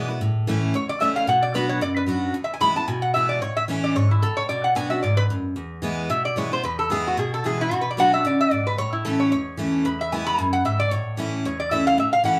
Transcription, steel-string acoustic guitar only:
Already playing: B2
0.08 B3 E4
0.21 A2
0.47 E3 A3 C#4 E4
0.74 E2
1.00 E3 A3 C#4 E4
1.27 B2
1.54 F#3 B3 D4 F#4
1.81 F#2
2.06 F#3 B3 D4 F#4
2.34 E2
2.61 E3 G#3 B3 E4
2.76 B3 E4
2.88 B2
3.15 E3 G#3 B3 E4
3.42 A2
3.68 E3 A3 C#4 E4
3.96 G#2
4.23 A2
4.49 B2
4.75 F#3 B3 D4 F#4
4.90 D4 F#4
5.04 G#2
5.30 F#2
5.56 E2
5.82 E3 G#3 B3 E4
6.10 B2
6.36 E3 G#3 B3 E4
6.52 B3 E4
6.64 E2
6.90 E3 G#3 B3 E4
7.17 B2
7.44 E3 G#3 B3 E4
7.71 B2
7.97 F#3 B3 D4 F#4
8.13 D4 F#4
8.25 C#3
8.51 G#2
8.78 A2
9.05 E3 A3 C#4 E4
9.32 E2
9.57 E3 A3 C#4 E4
9.85 E2
10.12 E3 G#3 B3 E4
10.38 F#2
10.65 G#2
10.91 A2
11.17 E3 A3 C#4 E4
11.45 E2
11.71 E3 A3 C#4 E4
11.98 A2
12.24 E3 A3 C#4 E4

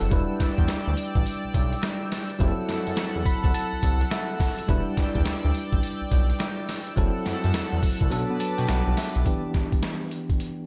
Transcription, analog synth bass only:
0.01 F#1
0.12 E1
0.40 E2
0.58 E2
0.69 D2
0.87 D2
1.16 A1
1.44 B1
1.55 B1
2.40 F#1
2.69 F#2
2.87 F#2
2.98 E2
3.16 E2
3.44 C2
3.73 C2
3.83 C2
4.69 E1
4.98 E2
5.16 E2
5.27 D2
5.45 D2
5.73 A1
6.02 B1
6.12 B1
6.98 F#1
7.26 F#2
7.44 F#2
7.55 E2
7.73 E2
8.01 C2
8.12 B1
8.30 B2
8.59 B2
8.69 B1
8.87 B1
9.16 B1

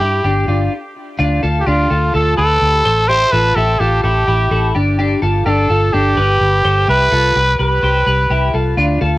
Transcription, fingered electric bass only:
0.00 G2
0.24 G1
0.48 G1
1.19 D2
1.43 D2
1.67 D2
1.91 D2
2.14 D2
2.38 D2
2.62 D2
2.85 A1
3.33 A1
3.56 A1
3.80 A1
4.04 A1
4.28 A1
4.51 A1
4.75 G1
5.22 G1
5.46 G1
5.70 G1
5.94 G1
6.17 G1
6.41 G1
6.65 G1
6.88 C2
7.12 C2
7.36 C2
7.60 C2
7.83 C2
8.07 C2
8.30 C2
8.54 C2
8.77 D2
9.02 D2

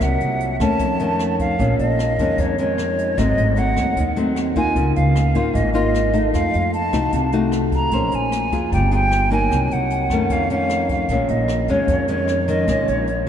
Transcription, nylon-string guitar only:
Already playing: F#3 A#3 D#4
0.01 C3
0.60 D#3 A3 C#4
0.79 F2
1.00 D#3 A3 C#4
1.59 A#2 D#3 G#3 C#4
2.19 D#3 G#3 C#4
2.40 F2
2.59 D#3 G#3 C#4
3.17 G#2 F#3 A3 C4
3.56 F#3 A3 C4
3.97 D#3
4.16 F#3 A3 C4
4.56 A#3 D#4 F4
4.76 C#3
5.35 A#3 D#4 F4
5.53 G#2
5.74 A#3 D#4 F4
6.13 A3 D#4
6.34 F3
6.93 A3 D#4 F#4
7.13 C3
7.33 A3 D#4 F#4
7.93 A#3 C#4 G#4 C5
8.53 B3 F4 G#4
8.72 G3
8.91 B3 F4 G#4
9.31 F#3 A#3 D#4
9.50 C3
10.11 D#3 A3 C#4
10.31 F2
10.50 D#3 A3 C#4
11.10 A#2 D#3 G#3 C#4
11.69 D#3 G#3 C#4
11.89 F2
12.08 D#3 G#3 C#4
12.48 D#3 G#3 C#4
12.68 A#2 D#3 G#3 C#4

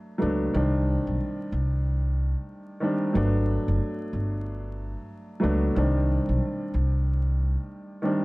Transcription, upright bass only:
0.22 C#2
0.55 C2
1.07 B1
1.52 C2
3.15 G1
3.68 F#1
4.13 G1
5.44 C#2
5.76 C2
6.29 B1
6.74 C2

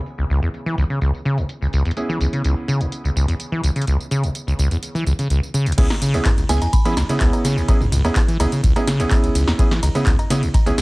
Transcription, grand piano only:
Already playing: B3 C#4 E4 G#4
1.97 B3 C#4 E4 G#4
5.78 B3 C#4 E4 G#4
6.14 B3 C#4 E4 G#4
6.49 B3 C#4 E4 G#4
6.85 B3 C#4 E4 G#4
7.09 B3 C#4 E4 G#4
7.21 B3 C#4 E4 G#4
7.68 B3 C#4 E4 G#4
8.04 B3 C#4 E4 G#4
8.40 B3 C#4 E4 G#4
8.76 B3 C#4 E4 G#4
9.00 B3 C#4 E4 G#4
9.11 B3 C#4 E4 G#4
9.59 B3 C#4 E4 G#4
9.95 B3 C#4 E4 G#4
10.30 B3 C#4 E4 G#4
10.66 B3 C#4 E4 G#4

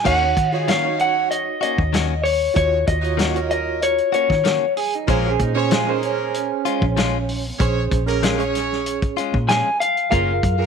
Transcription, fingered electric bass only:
0.05 D#2
0.37 D#3
1.78 D#2
2.56 D#2
2.87 D#2
4.30 D#3
5.08 A#1
5.39 A#2
6.81 A#1
7.60 A#1
7.91 A#1
9.34 A#2
10.11 F#1
10.43 F#2

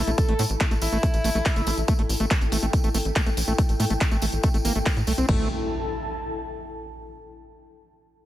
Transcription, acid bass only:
0.07 A3
0.29 A3
0.39 A3
0.61 A3
0.71 A3
0.92 A3
1.03 A3
1.24 A3
1.35 A3
1.56 A3
1.67 A3
1.88 A3
1.99 A3
2.20 A3
2.31 A3
2.52 A3
2.63 A3
2.84 A3
2.95 A3
3.16 A3
3.26 A3
3.48 A3
3.58 A3
3.80 A3
3.90 A3
4.12 A3
4.22 A3
4.44 A3
4.54 A3
4.65 A#3
4.76 A3
4.86 A#3
5.07 A3
5.18 C4
5.29 A3

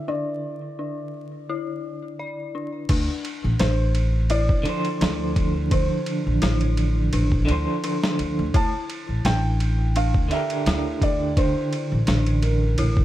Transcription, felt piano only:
0.08 D5
3.60 C5
4.30 D5
5.73 C5
8.56 A5
9.26 G5
9.97 F5
10.32 E5
11.03 D5
11.38 C5
12.42 A#4

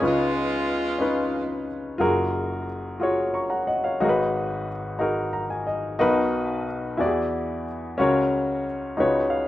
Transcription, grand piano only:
0.00 C#2 C#3 C#4 D#4 F4 B4
0.98 C#4 D#4 F4 B4
1.98 F#1 F#2 F4 F#4 G#4 A#4
3.00 F4 F#4 G#4 C#5
3.34 A#5 C#6
3.50 F#5 A#5
3.67 D#5 F#5
3.84 C#5 F5
4.00 G#1 G#2 D#4 F#4 G#4 A#4
4.09 B4
4.99 D#4 F#4 G#4 A#4
5.33 A#5
5.50 G#5
5.67 D#5
5.99 B1 B2 D#4 F#4 A#4 B4
6.97 E2 E3 E4 F#4 G4 D5
7.06 G#4
7.98 C#2 C#3 C#4 F#4 A#4 C#5
8.97 C#2 C#3 D#4 F#4 B4 C#5
9.30 F5

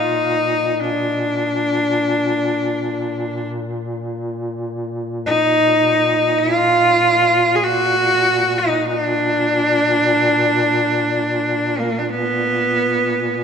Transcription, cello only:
Already playing: D#4
0.80 D4
5.26 D#4
6.38 E4
6.55 F4
7.56 G#4
7.63 F#4
8.58 D#4
8.85 D#4
8.98 D4
11.79 A#3
11.98 D4
12.09 B3
13.33 B3

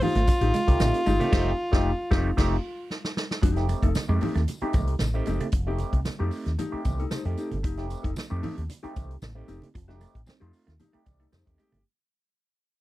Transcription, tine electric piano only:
0.67 A3 C4 D#4 G4
1.19 A3 C4 D#4 G4
1.32 A3 C4 D#4 G4
1.72 A3 C4 D#4 G4
2.11 A3 C4 D#4 G4
2.37 A3 C4 D#4 G4
3.56 A3 C4 D#4 G4
4.09 A3 C4 D#4 G4
4.61 A3 C4 D#4 G4
5.14 A3 C4 D#4 G4
5.67 A3 C4 D#4 G4
6.19 A3 C4 D#4 G4
6.72 A3 C4 D#4 G4
7.11 C5
7.25 A3 C4 D#4 G4 A4
7.78 A3 C4 D#4 G4
8.30 A3 C4 D#4 G4
8.83 A3 C4 D#4 G4
9.35 A3 C4 D#4 G4
9.88 A3 C4 D#4 G4
10.41 A3 C4 D#4 F4
10.94 A3 C4 D#4 G4
11.06 D5
11.32 C5
11.45 A3 C4 D#4 G4
11.59 G4

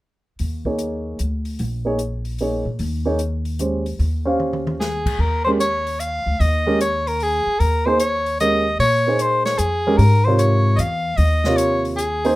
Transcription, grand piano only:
0.66 A#3 D#4 G#4 C#5
1.85 A#3 D#4 G#4 C#5
2.41 A#3 D#4 G#4 C#5
3.05 A#3 D#4 G#4 C#5
3.59 G#3 C#4 G4 C5
4.25 C#4 G4 C5 F5
5.47 G#3 C#4 G4 A#4
6.67 G#3 C#4 G4 A#4
7.86 A#3 D#4 G#4 C5
8.41 G#3 C#4 G4 A#4
9.07 A#3 D#4 G#4 C5
9.87 G#3 C#4 G4 A#4
10.27 C3 F4 A#4 C#5
11.45 C3 F4 A#4 C#5
12.25 A#3 D#4 G#4 C5

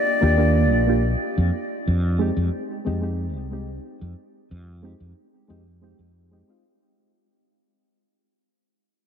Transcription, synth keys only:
0.21 A#3 D4 F4 G4
0.37 A#3 D4 F4 G4
0.87 A#3 D4 F4 G4
2.19 G#3 C4 D#4 G4
2.85 G#3 C4 D#4 G4
3.01 G#3 C4 D#4 G4
3.51 G#3 C4 D#4 G4
4.83 G#3 C4 D#4 G4
5.48 G#3 C4 D#4 G4
5.81 G#3 C4 D#4 G4
6.31 G#3 C4 D#4 G4
6.48 G#3 C4 D#4 F4

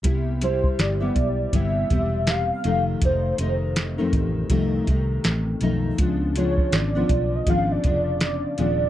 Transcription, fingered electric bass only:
0.04 C2
0.79 G1
1.15 B1
1.53 G1
1.91 E1
2.65 F1
3.02 F1
3.39 F1
4.13 A1
4.50 C2
4.88 C2
5.25 A1
5.62 B1
5.99 C#2
6.73 G#1
7.09 B1
7.46 G#1
7.85 F1
8.59 D#1

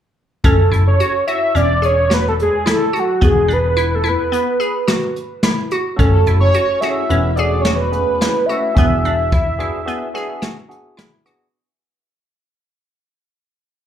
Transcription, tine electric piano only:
5.96 A3 C#4 F#4 A4
6.81 A3 C#4 F#4 G#4
7.09 A3 C#4 F#4 B4
7.37 A3 C#4 F#4 G#4
7.92 A3 C#4 F#4 G#4
8.48 A3 C#4 F#4 B4
8.74 B3 D4 F#4 G#4
9.58 B3 D4 F#4 G#4
9.85 B3 D4 F#4 G#4
10.14 B3 D4 F#4 G#4
10.69 B3 D4 F#4 G#4
11.25 B3 D4 F#4 G#4

